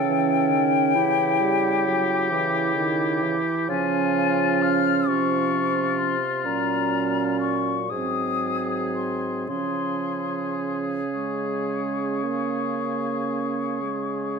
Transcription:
0.00 3.37 C#3 medium
0.00 0.51 E3 medium
0.00 0.97 C#4 medium
0.00 0.63 A4 medium
0.00 3.22 G5 loud
0.49 0.97 D#3 medium
0.95 1.42 E3 medium
0.95 2.32 E4 medium
0.95 3.65 G4 medium
1.40 1.88 G3 medium
1.86 2.32 F#3 medium
2.31 2.75 E3 medium
2.31 3.67 E4 medium
2.76 3.24 D#3 medium
3.22 3.70 E3 medium
3.69 5.09 C#3 medium
3.69 5.07 F3 medium
3.69 6.15 C#4 medium
3.69 5.05 F4 medium
3.69 4.64 G#5 medium
4.62 5.09 F6 medium
5.07 6.46 C3 medium
5.07 6.16 F3 medium
5.07 7.58 F4 medium
5.07 6.00 C#6 medium
5.99 6.47 C6 medium
6.44 7.91 A#2 medium
6.44 7.87 F#3 soft
6.44 7.87 C#4 medium
6.44 7.40 A#5 medium
7.40 7.91 C#6 medium
7.90 9.51 G#2 soft
7.90 9.46 F#3 soft
7.90 9.47 C4 soft
7.90 9.45 G#4 soft
7.90 8.95 D#6 medium
8.96 9.47 C6 medium
9.48 14.39 C#3 soft
9.48 11.01 F3 soft
9.48 14.39 C#4 soft
9.48 14.39 G#4 soft
9.48 10.79 C6 medium
11.14 12.25 G#3 soft
11.14 14.39 C#6 soft
12.23 13.82 A#3 soft
13.82 14.39 G#3 soft

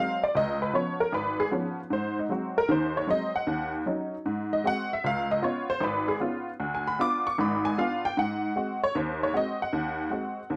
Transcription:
0.00 0.22 F#3 medium
0.00 0.22 G#3 medium
0.00 0.22 C4 medium
0.00 0.22 F5 loud
0.24 0.35 D5 medium
0.35 0.68 C#2 medium
0.35 0.61 D#5 loud
0.62 0.74 B4 medium
0.73 1.01 F3 medium
0.73 1.01 B3 medium
0.73 1.01 C#4 medium
0.73 0.99 C#5 medium
1.00 1.12 A#4 medium
1.12 1.46 G#1 medium
1.12 1.39 B4 medium
1.40 1.47 G#4 medium
1.51 1.79 F3 medium
1.51 1.79 B3 medium
1.51 1.79 C#4 medium
1.90 2.24 G#2 medium
1.90 2.17 C5 medium
2.19 2.30 D#4 medium
2.29 2.57 F#3 medium
2.29 2.57 G#3 soft
2.29 2.57 C4 medium
2.29 2.56 F#4 medium
2.58 2.69 A#4 medium
2.68 3.03 D#2 medium
2.68 3.03 D#3 medium
2.68 2.95 C5 medium
2.97 3.09 C#5 medium
3.07 3.35 F#3 medium
3.07 3.35 G#3 medium
3.07 3.35 C4 medium
3.07 3.35 D#5 loud
3.36 3.71 F#5 medium
3.47 3.81 D#2 medium
3.86 4.13 F#3 medium
3.86 4.14 C#4 medium
3.86 4.14 D#4 medium
4.26 4.59 G#2 medium
4.53 4.65 D#5 medium
4.64 4.92 G#3 medium
4.64 4.92 C4 medium
4.64 4.92 F#4 medium
4.64 4.91 F#5 loud
4.93 5.04 E5 medium
5.04 5.38 C#2 medium
5.04 5.30 F5 loud
5.31 5.43 D#5 medium
5.42 5.70 B3 medium
5.42 5.70 C#4 soft
5.42 5.70 F4 medium
5.42 5.69 C#5 medium
5.70 5.82 C5 medium
5.80 6.15 G#1 medium
5.80 6.08 B4 medium
6.08 6.16 G#4 medium
6.20 6.48 B3 medium
6.20 6.48 C#4 medium
6.20 6.49 F4 medium
6.60 6.94 D2 medium
6.75 6.86 G#5 medium
6.87 6.99 B5 medium
6.99 7.26 B3 medium
6.99 7.26 D4 soft
6.99 7.27 F4 medium
6.99 7.25 D6 loud
7.27 7.39 C#6 medium
7.38 7.72 G#1 medium
7.38 7.72 G#2 medium
7.38 7.65 B5 medium
7.65 7.77 G#5 medium
7.78 8.05 B3 medium
7.78 8.05 D4 medium
7.78 8.05 F4 medium
7.78 8.03 F5 medium
8.05 8.17 G5 loud
8.17 8.51 G#2 medium
8.17 8.79 F#5 medium
8.56 8.83 G#3 medium
8.56 8.83 C4 soft
8.56 8.84 F#4 medium
8.84 8.95 C#5 loud
8.95 9.29 D#2 medium
8.95 9.21 C5 medium
9.23 9.35 C#5 medium
9.33 9.61 G#3 medium
9.33 9.61 C4 medium
9.33 9.61 F#4 medium
9.33 9.61 D#5 medium
9.62 10.48 F#5 medium
9.73 10.07 D#2 medium
10.10 10.39 G#3 medium
10.10 10.39 C4 soft
10.10 10.39 F#4 medium
10.50 10.56 D#2 medium

